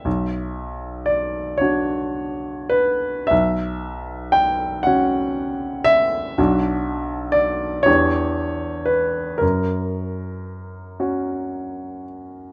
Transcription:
\new Staff \with { instrumentName = "Grand piano" } { \time 6/8 \key b \minor \tempo 4. = 39 << { e''4 d''8 cis''4 b'8 | e''4 g''8 fis''4 e''8~ | e''4 d''8 cis''4 b'8 | ais'2~ ais'8 r8 | } \\ { b,,4. <d' fis'>4. | b,,4. <cis' fis'>4. | <b,, d' fis'>4. <e, d' g'>4. | fis,4. <cis' fis'>4. | } >> }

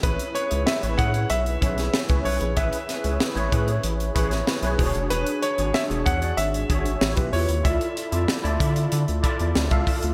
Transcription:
<<
  \new Staff \with { instrumentName = "Grand piano" } { \time 4/4 \key a \major \tempo 4 = 95 b'8 cis''8 e''8 fis''8 e''4. cis''8 | e''2 r2 | b'8 cis''8 e''8 fis''8 e''4. cis''8 | e''2 r2 | }
  \new Staff \with { instrumentName = "Clean electric guitar" } { \time 4/4 \key a \major <cis' gis' b'>16 r16 <cis' gis' b'>16 <cis' gis' b'>16 r8 <cis' gis' b'>16 <cis' gis' cis''>16 r8 <cis' gis' b'>16 r8. <cis' gis' b'>16 r16 | <cis' gis' b'>16 r16 <cis' gis' b'>16 <cis' gis' b'>16 r8 <cis' gis' b'>16 <cis' gis' cis''>16 r8 <cis' gis' b'>16 r8. <d' gis' cis''>16 r16 | <d' gis' cis''>16 r16 <d' gis' cis''>16 <d' gis' cis''>16 r8 <d' gis' cis''>16 <d' gis' d''>16 r8 <d' gis' cis''>16 r8. <f' g' cis''>16 r16 | <f' a' e''>16 r16 <f' a' e''>16 <f' a' e''>16 r8 <f' a' e''>16 <f' a' f''>16 r8 <f' a' e''>16 r8. <f' a' e''>16 r16 | }
  \new Staff \with { instrumentName = "Tine electric piano" } { \time 4/4 \key a \major <e' gis' b' cis''>8 r16 <e' gis' b' cis''>8 <e' gis' b' cis''>4 r16 <e' gis' b' cis''>8 r16 <e' gis' b' cis''>8 r16 | <e' gis' b' e''>8 r16 <e' gis' b' cis''>8 <e' gis' b' cis''>4 r16 <e' gis' b' cis''>8 r16 <e' gis' b' cis''>16 <d' fis' gis' c'' cis''>8~ | <d' fis' gis' c'' cis''>8 r16 <d' fis' gis' cis''>8 <d' fis' gis' cis''>4 r16 <d' fis' gis' cis''>8 <e' f' g' cis''>16 <e' f' g' b'>8 r16 | <e' f' a' d''>8 r16 <e' f' a' d''>8 <e' f' a' d''>4 r16 <e' f' a' d''>8 r16 <f' a' e'' f''>8 r16 | }
  \new Staff \with { instrumentName = "Analog synth bass" } { \clef bass \time 4/4 \key a \major a,,16 r8 cis,16 r16 a,,16 a,8 b,,8 b,,8 r16 cis,16 b,,16 bes,,16 | a,,16 r8 cis,16 r16 a,,16 a,8 a,,8 a,,8 r16 b,,16 e,,16 f,,16 | e,,16 r8 gis,,16 r16 e,,16 e,8 gis,,8 gis,,8 a,,16 b,,16 e,16 dis,16 | d,16 r8 f,16 r16 d,16 d8 d16 d,16 r16 e,16 d,16 cis,16 r16 d,16 | }
  \new DrumStaff \with { instrumentName = "Drums" } \drummode { \time 4/4 <hh bd>16 hh16 hh16 hh16 sn16 hh16 <hh bd>16 hh16 hh16 hh16 <hh bd>16 <hh sn>16 sn16 <hh bd>16 hho16 hh16 | <hh bd>16 hh16 <hh sn>16 hh16 sn16 hh16 <hh bd>16 hh16 hh16 hh16 <hh bd>16 <hh sn>16 sn16 hh16 <hho bd>16 hh16 | hh16 hh16 hh16 hh16 sn16 hh16 <hh bd>16 hh16 hh16 hh16 <hh bd>16 hh16 sn16 <hh bd>16 hho16 hh16 | <hh bd>16 hh16 hh16 hh16 sn16 hh16 <hh bd>16 hh16 hh16 hh16 <hh bd>16 hh16 sn16 <hh bd>16 <hho bd>16 hh16 | }
>>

